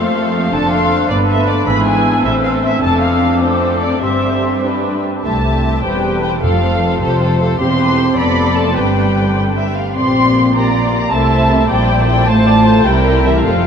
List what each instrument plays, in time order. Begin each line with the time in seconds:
Already playing: cello section F2, viola section F3 A3, clarinet A3, violin section A4 C5 F5, flute section C6
0.15 viola section A#3
0.34 viola section C4
0.52 double bass section F1, cello section F2, viola section D3 D4, clarinet D4, violin section A4 C5 A5, flute section C6
0.72 violin section F5
1.09 double bass section G1, cello section G2, viola section D3 B3, violin section B4 D5, flute section B5
1.28 violin section E5
1.48 violin section D5
1.67 double bass section G#1, cello section G#2, viola section E3 B3, violin section G#4 B4 B5, flute section E6
1.86 violin section G#5
2.24 double bass section A1, cello section A2, viola section E3 C4, clarinet C4, violin section A4 C5 E5
2.45 violin section F5
2.64 violin section E5
2.82 double bass section F1, cello section F2, viola section A3 C4, violin section D4 A4 A5, flute section D6
3.02 violin section F5
3.41 viola section A3 C4, violin section D4 A4 C5
3.82 violin section D5
4.01 double bass section G1, cello section G2, viola section G3 C4, violin section G4 C5 E5, flute section C6
4.64 viola section G3 D4, clarinet D4, violin section G4 B4, flute section B5
5.24 double bass section C2, cello section C2, french horn section A3, violin section G4 E5 A5
5.46 violin section G4 E5
5.65 violin section G4 E5
5.83 double bass section E1, cello section E2, french horn section G3, violin section G4 C5 G5, viola section B4
6.05 violin section G4 C5
6.23 french horn section G3, violin section G4 C5 G5
6.43 double bass section F1, cello section F2, timpani F2, french horn section F3, viola section A4, violin section A4 C5 F5
6.64 violin section A4 C5
6.84 violin section A4 C5
7.00 double bass section F1, cello section F2, french horn section C3, viola section G4, violin section A4 C5
7.21 viola section F4, violin section A4 C5
7.40 viola section A4, violin section A4 C5
7.59 double bass section E1, cello section E2, french horn section C4, viola section G4, violin section G4 C5 C6
7.79 viola section B4
7.99 viola section C5
8.17 double bass section F1, cello section F2, french horn section B3, violin section A4 D5 B5, viola section D5
8.55 french horn section A3, violin section A5
8.74 double bass section G1, cello section G2, french horn section G3, viola section B4, violin section B4 D5 G5
9.36 violin section D5
9.56 violin section E5
9.77 violin section F5
9.96 double bass section A#1, cello section A#2, french horn section C4, violin section G4 D5 C6
10.55 french horn section A#3, violin section G4 D5 A#5, viola section D5
10.85 violin section F4
10.94 french horn section A#3, violin section A#5
11.11 double bass section C2, cello section C3, french horn section A3, violin section E4 C5 A5, viola section E5
11.68 double bass section A#1, cello section A#2, french horn section G3, violin section E4 C5 G5, viola section D5
12.07 french horn section G3, violin section G5
12.27 double bass section A1, cello section A2, french horn section A3, violin section F4 C5 A5, viola section C5
12.47 viola section D5
12.66 viola section C5
12.85 double bass section C2, cello section C3, french horn section G3, violin section E4 A#4 G5, viola section A#4
13.25 french horn section E3, violin section E5
13.44 double bass section F1, cello section F2, timpani F2, french horn section F3, violin section F4 A4 F5, viola section A4
13.54 timpani F2
13.62 timpani F2